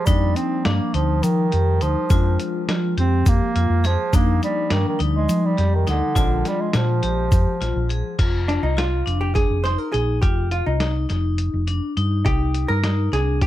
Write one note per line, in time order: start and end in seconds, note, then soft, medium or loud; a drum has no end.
0.05 0.33 F2 medium
0.05 2.06 F3 medium
0.05 0.38 G3 medium
0.05 2.07 G3 soft
0.05 2.07 A#3 medium
0.05 2.07 D4 medium
0.05 0.56 D#4 medium
0.05 kick loud
0.05 closed hi-hat medium
0.05 shaker medium
0.36 0.67 C4 medium
0.36 closed hi-hat medium
0.36 shaker soft
0.65 0.78 G2 medium
0.65 0.96 A#3 medium
0.65 0.90 D4 medium
0.65 snare loud
0.65 closed hi-hat medium
0.94 1.20 D2 medium
0.94 1.25 F3 medium
0.94 1.44 D#4 medium
0.94 closed hi-hat medium
1.23 1.84 D#3 medium
1.23 1.49 F3 medium
1.23 closed hi-hat medium
1.23 shaker medium
1.52 1.78 F2 medium
1.52 1.77 G4 medium
1.52 closed hi-hat medium
1.81 1.94 D2 medium
1.81 2.40 F3 medium
1.81 2.06 D#4 medium
1.81 closed hi-hat medium
1.81 shaker soft
2.10 2.36 F2 medium
2.10 4.09 F3 medium
2.10 4.09 G#3 medium
2.10 4.09 C4 medium
2.10 4.10 D4 medium
2.10 2.60 F4 medium
2.10 kick loud
2.10 closed hi-hat medium
2.10 shaker medium
2.40 closed hi-hat medium
2.40 shaker soft
2.69 2.94 F3 medium
2.69 2.93 F4 medium
2.69 snare loud
2.69 closed hi-hat medium
2.97 3.23 F2 medium
2.97 3.30 C4 loud
2.97 3.47 G4 medium
2.97 closed hi-hat medium
3.26 3.39 F2 loud
3.26 3.88 A#3 loud
3.26 kick loud
3.26 closed hi-hat medium
3.26 shaker medium
3.56 3.68 F2 medium
3.56 3.80 F4 medium
3.56 closed hi-hat medium
3.70 3.95 F2 medium
3.84 4.17 F3 medium
3.84 4.09 G#4 medium
3.84 snare soft
3.84 closed hi-hat medium
3.84 shaker soft
4.13 4.39 F2 medium
4.13 6.12 F3 medium
4.13 6.12 G3 medium
4.13 6.12 A#3 medium
4.13 4.43 A#3 loud
4.13 6.12 D4 medium
4.13 4.63 D#4 medium
4.13 kick loud
4.13 closed hi-hat medium
4.13 shaker medium
4.42 4.74 G3 medium
4.42 closed hi-hat medium
4.42 shaker soft
4.70 4.84 G2 medium
4.70 4.86 D#3 medium
4.70 4.96 D4 medium
4.70 snare loud
4.70 closed hi-hat medium
4.88 5.00 D#3 medium
4.99 5.26 D2 medium
4.99 5.49 D#4 medium
4.99 closed hi-hat medium
5.16 5.47 G#3 medium
5.29 5.55 F3 medium
5.29 closed hi-hat medium
5.29 shaker medium
5.46 5.77 G3 medium
5.58 5.84 F2 medium
5.58 5.82 G4 medium
5.58 snare soft
5.58 closed hi-hat soft
5.75 5.88 D#3 medium
5.87 6.00 D2 medium
5.87 6.49 D3 medium
5.87 6.12 D#4 medium
5.87 snare soft
5.87 closed hi-hat medium
5.87 shaker soft
6.15 6.42 A#1 medium
6.15 8.14 F3 medium
6.15 8.15 G#3 medium
6.15 8.15 C4 medium
6.15 8.15 D4 medium
6.15 6.65 F4 medium
6.15 kick loud
6.15 closed hi-hat medium
6.15 shaker medium
6.45 6.62 G3 medium
6.45 snare soft
6.45 closed hi-hat soft
6.45 shaker soft
6.61 6.75 G#3 medium
6.73 7.00 A#2 medium
6.73 7.87 F3 medium
6.73 6.98 F4 medium
6.73 snare loud
6.73 closed hi-hat medium
6.73 shaker soft
7.03 7.29 A#1 medium
7.03 7.52 G4 medium
7.03 closed hi-hat medium
7.32 7.45 F2 medium
7.32 kick loud
7.32 closed hi-hat medium
7.32 shaker medium
7.61 7.74 A#1 medium
7.61 7.85 F4 medium
7.61 snare soft
7.61 closed hi-hat medium
7.76 8.01 A#1 medium
7.89 8.14 G#4 medium
7.89 closed hi-hat medium
8.19 8.57 F1 medium
8.19 8.68 F4 medium
8.19 kick medium
8.19 closed hi-hat medium
8.19 crash medium
8.48 8.63 D4 medium
8.48 snare soft
8.48 closed hi-hat medium
8.63 9.01 C2 medium
8.63 8.76 D#4 medium
8.77 9.02 F4 medium
8.77 9.18 F4 medium
8.77 snare medium
8.77 closed hi-hat medium
9.06 9.45 F1 medium
9.06 9.55 D4 medium
9.06 closed hi-hat medium
9.21 9.35 G4 medium
9.35 9.62 G#4 medium
9.35 kick medium
9.35 snare soft
9.35 closed hi-hat medium
9.50 9.75 F1 medium
9.64 9.89 D#4 medium
9.64 9.78 C5 medium
9.64 snare soft
9.64 closed hi-hat medium
9.78 9.93 A#4 medium
9.92 10.19 A#1 medium
9.92 10.18 D#4 medium
9.92 10.20 G#4 medium
9.92 closed hi-hat medium
10.22 10.61 F1 medium
10.22 10.72 F4 medium
10.22 10.51 G4 medium
10.22 kick loud
10.22 closed hi-hat medium
10.51 10.65 F4 medium
10.51 closed hi-hat medium
10.66 11.05 C2 medium
10.66 10.93 D#4 medium
10.80 11.05 D#4 medium
10.80 snare medium
10.80 closed hi-hat medium
11.09 11.48 F1 medium
11.09 11.59 D#4 medium
11.09 snare soft
11.09 closed hi-hat medium
11.38 closed hi-hat medium
11.54 11.79 F1 medium
11.67 11.92 D4 medium
11.67 closed hi-hat medium
11.97 12.22 G2 medium
11.97 12.21 D#4 medium
11.97 closed hi-hat medium
12.25 12.64 C2 medium
12.25 12.75 D#4 medium
12.25 12.70 G4 medium
12.25 kick medium
12.25 closed hi-hat medium
12.54 closed hi-hat medium
12.68 13.08 G2 medium
12.68 13.13 A#4 medium
12.84 13.08 D#4 medium
12.84 snare loud
12.84 closed hi-hat medium
13.12 13.47 C2 medium
13.12 13.47 D4 medium
13.12 13.40 G#4 medium
13.12 snare soft
13.12 closed hi-hat medium
13.41 13.47 G4 medium
13.41 kick loud
13.41 closed hi-hat medium